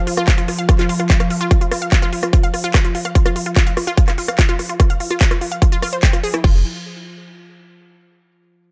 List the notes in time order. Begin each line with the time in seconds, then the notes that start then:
Already playing: F3
0.07 F4, open hi-hat
0.17 F4, cross-stick, closed hi-hat
0.28 F4, kick, clap, closed hi-hat
0.38 F4, closed hi-hat
0.48 F4, cross-stick, open hi-hat
0.58 F5, closed hi-hat
0.69 F4, kick, cross-stick, closed hi-hat
0.79 F4, clap, closed hi-hat
0.89 F4, open hi-hat
1.00 F4, cross-stick, closed hi-hat
1.10 F4, kick, clap, closed hi-hat
1.20 F5, cross-stick, closed hi-hat
1.30 F4, open hi-hat
1.41 F4, closed hi-hat
1.51 F4, kick, cross-stick, closed hi-hat
1.61 F4, closed hi-hat
1.71 F4, cross-stick, open hi-hat
1.82 F5, closed hi-hat
1.92 F4, kick, clap, closed hi-hat
2.02 F4, cross-stick, closed hi-hat
2.13 F4, open hi-hat
2.23 F4, cross-stick, closed hi-hat
2.33 F4, kick, closed hi-hat
2.43 F5, closed hi-hat
2.54 F4, cross-stick, open hi-hat
2.64 F4, closed hi-hat
2.74 F4, kick, cross-stick, clap, closed hi-hat
2.84 F4, closed hi-hat
2.95 F4, open hi-hat
3.05 F5, cross-stick, closed hi-hat
3.15 F4, kick, closed hi-hat
3.26 F4, cross-stick, closed hi-hat
3.36 F4, open hi-hat
3.46 F4, closed hi-hat
3.56 F4, kick, cross-stick, clap, closed hi-hat
3.67 F5, closed hi-hat
3.77 F4, cross-stick, open hi-hat
3.87 F4, closed hi-hat
3.97 F4, kick, closed hi-hat
4.08 F4, cross-stick, clap, closed hi-hat
4.18 F4, open hi-hat
4.28 F5, cross-stick, closed hi-hat
4.39 F4, kick, clap, closed hi-hat
4.49 F4, closed hi-hat
4.59 F4, cross-stick, open hi-hat
4.69 F4, closed hi-hat
4.80 F4, kick, cross-stick, closed hi-hat
4.90 F5, closed hi-hat
5.00 F4, open hi-hat
5.11 F4, cross-stick, closed hi-hat
5.21 F4, kick, clap, closed hi-hat
5.31 F4, cross-stick, closed hi-hat
5.41 F4, open hi-hat
5.52 F5, closed hi-hat
5.62 F4, kick, cross-stick, closed hi-hat
5.72 F4, closed hi-hat
5.82 F4, cross-stick, open hi-hat
5.93 C5, closed hi-hat
6.03 G5, kick, clap, closed hi-hat
6.13 F4, cross-stick, closed hi-hat
6.23 G#4, open hi-hat
6.34 E4, cross-stick, closed hi-hat
6.44 F1 F4, kick, crash